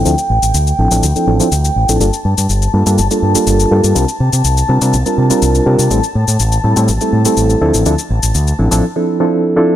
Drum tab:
SH |xx-xxx-xxx-xxx-x|xx-xxx-xxx-xxx-x|xx-xxx-xxx-xxx-x|xx-xxx-xxx-xxx-x|

SH |xx-xxx-x--------|